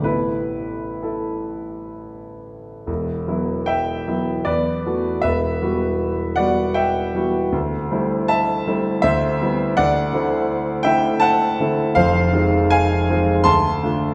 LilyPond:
<<
  \new Staff \with { instrumentName = "Grand piano" } { \time 3/4 \key a \minor \tempo 4 = 79 <e' b'>4 <e' a'>4 r4 | \key d \mixolydian r4 <e'' g''>4 <b' d''>4 | <b' e''>4. <d'' fis''>8 <e'' g''>4 | r4 <e'' a''>4 <c'' e''>4 |
<d'' fis''>4. <e'' g''>8 <fis'' a''>4 | \key f \mixolydian <c'' f''>4 <f'' aes''>4 <a'' c'''>4 | }
  \new Staff \with { instrumentName = "Grand piano" } { \time 3/4 \key a \minor <a,, c a b>2. | \key d \mixolydian <e,, e,>8 <e fis b e'>4 <e fis b e'>8 e,8 <e a b fis'>8 | <e,, e,>8 <e g b fis'>4 <e g b fis'>4 <e g b fis'>8 | d,8 <g a c' e'>4 <g a c' e'>8 d,8 <g b c' e'>8 |
d,8 <d a c' e'>4 <d a c' e'>4 <d a c' e'>8 | \key f \mixolydian <f,, f,>8 <ees aes c' f'>4 <ees aes c' f'>8 d,8 <d a d' f'>8 | }
>>